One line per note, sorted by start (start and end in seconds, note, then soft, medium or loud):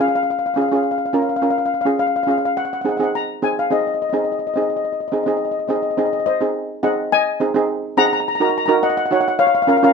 0.00 0.34 C#4 medium
0.00 0.34 F4 medium
0.00 0.34 G#4 medium
0.00 0.07 F5 medium
0.08 0.14 F5 medium
0.15 0.22 F5 medium
0.23 0.29 F5 medium
0.30 0.37 F5 medium
0.39 0.45 F5 medium
0.46 0.52 F5 medium
0.54 0.65 C#4 medium
0.54 0.65 F4 medium
0.54 0.65 G#4 medium
0.54 0.60 F5 medium
0.61 0.67 F5 medium
0.69 0.97 C#4 medium
0.69 0.97 F4 medium
0.69 0.97 G#4 medium
0.69 0.74 F5 soft
0.76 0.82 F5 medium
0.83 0.90 F5 soft
0.91 0.97 F5 medium
0.98 1.04 F5 medium
1.06 1.12 F5 medium
1.13 1.30 C#4 medium
1.13 1.31 F4 medium
1.13 1.31 A#4 medium
1.13 1.20 F5 soft
1.22 1.28 F5 medium
1.29 1.35 F5 soft
1.36 1.42 F5 medium
1.42 1.68 C#4 medium
1.42 1.68 F4 medium
1.42 1.68 A#4 medium
1.42 1.49 F5 medium
1.50 1.57 F5 medium
1.58 1.64 F5 medium
1.66 1.73 F5 medium
1.74 1.80 F5 medium
1.81 1.88 F5 medium
1.85 2.11 C#4 medium
1.85 2.11 F4 medium
1.85 2.11 G#4 medium
1.99 2.06 F5 medium
2.07 2.14 F5 medium
2.16 2.22 F5 medium
2.23 2.56 C#4 medium
2.23 2.29 F5 medium
2.27 2.56 F4 medium
2.27 2.57 G#4 medium
2.27 2.37 F5 medium
2.38 2.44 F5 medium
2.45 2.52 F5 medium
2.57 2.64 F#5 medium
2.65 2.71 F#5 medium
2.73 2.79 F#5 medium
2.81 2.93 C4 medium
2.81 2.94 D#4 medium
2.81 2.87 F#5 medium
2.85 2.94 G#4 medium
2.85 2.95 F#5 medium
2.97 3.25 C4 medium
2.97 3.25 D#4 medium
2.97 3.25 G#4 medium
2.97 3.02 F#5 medium
3.03 3.10 F#5 medium
3.15 3.41 A#5 medium
3.42 3.59 C4 medium
3.42 3.60 D#4 medium
3.42 3.60 G#4 medium
3.42 3.58 G#5 medium
3.59 3.72 F5 medium
3.70 3.96 C4 medium
3.70 3.96 D#4 medium
3.70 3.97 G#4 medium
3.70 3.78 D#5 medium
3.80 3.86 D#5 soft
3.87 3.93 D#5 medium
3.94 4.01 D#5 soft
4.02 4.08 D#5 medium
4.10 4.39 C4 medium
4.10 4.39 D#4 medium
4.10 4.16 D#5 soft
4.14 4.39 G#4 medium
4.14 4.23 D#5 soft
4.24 4.31 D#5 soft
4.32 4.38 D#5 soft
4.39 4.46 D#5 soft
4.47 4.53 D#5 medium
4.54 4.90 C4 medium
4.54 4.91 D#4 medium
4.54 4.91 G#4 medium
4.54 4.61 D#5 soft
4.62 4.69 D#5 soft
4.70 4.75 D#5 soft
4.77 4.84 D#5 medium
4.85 4.91 D#5 soft
4.93 4.99 D#5 soft
5.00 5.07 D#5 soft
5.08 5.14 D#5 soft
5.12 5.21 C4 medium
5.12 5.21 D#4 medium
5.12 5.22 G#4 medium
5.12 5.22 D#5 soft
5.23 5.53 C4 medium
5.23 5.53 D#4 medium
5.23 5.29 D#5 soft
5.28 5.53 G#4 medium
5.28 5.36 D#5 soft
5.37 5.44 D#5 soft
5.45 5.50 D#5 soft
5.52 5.58 D#5 soft
5.59 5.66 D#5 soft
5.68 5.87 C4 medium
5.68 5.87 D#4 medium
5.68 5.87 G#4 medium
5.68 5.74 D#5 soft
5.75 5.81 D#5 soft
5.83 5.89 D#5 medium
5.91 5.97 D#5 soft
5.97 6.24 C4 medium
5.97 6.24 D#4 medium
5.97 6.24 G#4 medium
5.97 6.05 D#5 medium
6.06 6.12 D#5 soft
6.13 6.19 D#5 medium
6.20 6.25 D#5 soft
6.26 6.80 C5 medium
6.26 6.28 D#5 medium
6.26 6.35 D#5 medium
6.41 6.67 C4 medium
6.41 6.67 D#4 medium
6.41 6.67 G#4 medium
6.83 7.12 C4 medium
6.83 7.12 D#4 medium
6.83 7.13 G#4 medium
6.83 7.11 D#5 medium
6.83 7.10 F#5 medium
7.12 7.94 D#5 medium
7.12 8.00 G#5 loud
7.40 7.49 C4 medium
7.40 7.49 D#4 medium
7.40 7.50 G#4 medium
7.54 7.80 C4 medium
7.54 7.81 D#4 medium
7.54 7.81 G#4 medium
7.97 8.23 C4 medium
7.97 8.23 D#4 medium
7.97 8.24 G#4 medium
7.97 8.05 F#5 medium
7.97 8.04 A#5 loud
8.05 8.12 A#5 medium
8.13 8.19 A#5 medium
8.20 8.27 A#5 medium
8.28 8.34 A#5 medium
8.35 8.41 A#5 medium
8.40 8.57 D#4 medium
8.40 8.58 F#4 medium
8.40 8.58 A#4 medium
8.40 8.48 A#5 medium
8.49 8.56 A#5 medium
8.58 8.65 A#5 medium
8.66 8.94 D#4 medium
8.66 8.94 F#4 medium
8.66 8.94 A#4 medium
8.66 8.73 A#5 medium
8.83 8.90 D#5 medium
8.83 8.88 F#5 medium
8.90 8.96 F#5 medium
8.97 9.04 F#5 medium
9.06 9.12 F#5 medium
9.11 9.39 D#4 medium
9.11 9.40 F#4 medium
9.11 9.40 C#5 medium
9.11 9.19 F#5 medium
9.21 9.27 F#5 medium
9.28 9.36 F#5 medium
9.39 9.47 C#5 medium
9.39 9.46 F5 loud
9.47 9.53 F5 medium
9.55 9.61 F5 medium
9.62 9.68 F5 medium
9.67 9.76 C#4 medium
9.67 9.76 F4 medium
9.67 9.77 A#4 medium
9.67 9.76 F5 medium
9.77 9.83 F5 medium
9.83 9.93 C#4 medium
9.83 9.93 F4 medium
9.83 9.93 A#4 medium
9.83 9.92 F5 medium